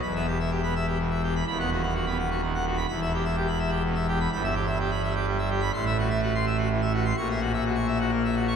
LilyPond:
<<
  \new Staff \with { instrumentName = "Pipe organ" } { \time 3/4 \key e \minor \tempo 4 = 126 b''16 e''16 g'16 e''16 g'16 b''16 e''16 g'16 b,16 e''16 g'16 b''16 | b''16 fis''16 fis'16 fis''16 fis'16 b''16 fis''16 fis'16 dis16 fis''16 fis'16 b''16 | b''16 e''16 g'16 e''16 g'16 b''16 e''16 g'16 b,16 e''16 g'16 b''16 | b''16 e''16 g'16 e''16 g'16 b''16 e''16 g'16 g16 e''16 g'16 b''16 |
c'''16 e''16 fis'16 e''16 fis'16 c'''16 e''16 fis'16 e16 e''16 fis'16 c'''16 | cis'''16 e''16 fis'16 e''16 fis'16 cis'''16 e''16 fis'16 ais16 e''16 fis'16 cis'''16 | }
  \new Staff \with { instrumentName = "Pipe organ" } { \clef bass \time 3/4 \key e \minor << { e,16 b16 r8. b16 r4. | dis,16 b16 r8. b16 r4. | e,2. | g,2. |
a,2. | ais,2. | } \\ { e,,2. | dis,,2. | e,,2. | g,,2. |
a,,2. | ais,,2. | } >> }
>>